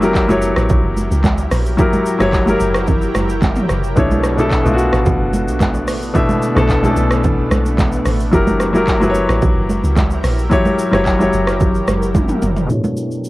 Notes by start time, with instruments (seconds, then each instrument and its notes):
Already playing: log drum bass F#1, ambient pad F#3 E4 G4 A#4, grand piano E4 G4 A#4
0.00 grand piano F#3 E4 G4 A#4, high conga, shaker
0.15 kick, clap, shaker
0.28 log drum bass F#1, grand piano F#3 E4 G4 C#5, high conga, shaker
0.42 shaker
0.56 log drum bass A1, cross-stick, shaker
0.69 log drum bass A#1, kick, low conga, shaker
0.84 log drum bass F#1
0.97 high conga, shaker
1.11 log drum bass C#2, shaker
1.24 kick, clap, high conga, low conga, shaker
1.38 shaker
1.51 log drum bass A#1, cross-stick, open hi-hat, shaker
1.66 shaker
1.77 grand piano F#3 E4 G4 A#4, kick, low conga, shaker
1.93 high conga, shaker
2.06 shaker
2.19 log drum bass F#1, grand piano F#3 E4 G4 C#5, cross-stick, high conga, shaker
2.33 kick, clap, shaker
2.46 grand piano F#3 E4 G4 A#4, high conga, shaker
2.60 log drum bass F#1, shaker
2.74 cross-stick, shaker
2.87 kick, low conga, shaker
3.02 shaker
3.15 log drum bass F#1, cross-stick, high conga, shaker
3.29 shaker
3.42 kick, clap, high conga, low conga, shaker
3.56 mid tom, shaker
3.69 log drum bass F#1, cross-stick, shaker
3.84 shaker
3.96 log drum bass B1, grand piano B2 A3 D4 E4 C#5, ambient pad A3 B3 D4, kick, low conga, shaker
4.11 high conga, shaker
4.24 cross-stick, shaker
4.37 grand piano B2 A3 D4 E4 A4, high conga, shaker
4.51 kick, clap, shaker
4.64 log drum bass B1, grand piano B2 A3 D4 E4 F4, high conga, shaker
4.74 grand piano F#4
4.78 shaker
4.93 log drum bass A1, cross-stick, shaker
5.06 log drum bass B1, kick, low conga, shaker
5.20 log drum bass F#1
5.33 high conga, shaker
5.47 log drum bass B1, shaker
5.60 kick, clap, high conga, low conga, shaker
5.74 shaker
5.88 log drum bass A1, cross-stick, open hi-hat, shaker
6.02 shaker
6.14 grand piano B2 A3 D4 E4 E5, kick, low conga, shaker
6.29 high conga, shaker
6.42 shaker
6.55 log drum bass B1, grand piano B2 A3 D4 E4 A4, cross-stick, high conga, shaker
6.69 kick, clap, shaker
6.83 grand piano B2 A3 C#4 E4 A4, high conga, shaker
6.91 grand piano D4
6.97 log drum bass B1, shaker
7.11 cross-stick, shaker
7.24 kick, low conga, shaker
7.51 log drum bass B1, cross-stick, high conga, shaker
7.66 shaker
7.78 kick, clap, high conga, low conga, shaker
7.92 shaker
8.06 log drum bass A1, cross-stick, open hi-hat, shaker
8.20 shaker
8.32 log drum bass F#1, grand piano F#3 E4 G4 A#4, ambient pad F#3 E4 G4 A#4, kick, low conga, shaker
8.47 high conga, shaker
8.60 cross-stick, shaker
8.73 grand piano F#3 E4 G4 A#4, high conga, shaker
8.87 kick, clap, shaker
9.00 log drum bass F#1, grand piano F#3 E4 G4 B4, high conga, shaker
9.10 grand piano C#5
9.15 shaker
9.29 log drum bass A1, cross-stick, shaker
9.42 log drum bass A#1, kick, low conga, shaker
9.56 log drum bass F#1
9.69 high conga, shaker
9.84 log drum bass C#2, shaker
9.96 kick, clap, high conga, low conga, shaker
10.10 shaker
10.24 log drum bass A#1, cross-stick, open hi-hat, shaker
10.38 shaker
10.50 grand piano F#3 E4 G4 C#5, kick, low conga, shaker
10.65 high conga, shaker
10.79 shaker
10.91 log drum bass F#1, grand piano F#3 E4 G4 C#5, cross-stick, high conga, shaker
11.06 kick, clap, shaker
11.19 grand piano F#3 E4 G4 C#5, high conga, shaker
11.33 log drum bass F#1, shaker
11.47 cross-stick, shaker
11.60 kick, low conga, shaker
11.75 shaker
11.88 log drum bass F#1, cross-stick, high conga, shaker
12.02 shaker
12.15 kick, high tom, high conga, low conga, shaker
12.29 mid tom, shaker
12.42 log drum bass F#1, mid tom, shaker
12.57 floor tom, shaker
12.66 grand piano B2 A3 D4, ambient pad A3 B3 D4, low conga, shaker
12.71 grand piano E4 C#5
12.84 high conga, shaker
12.97 shaker
13.11 shaker
13.24 shaker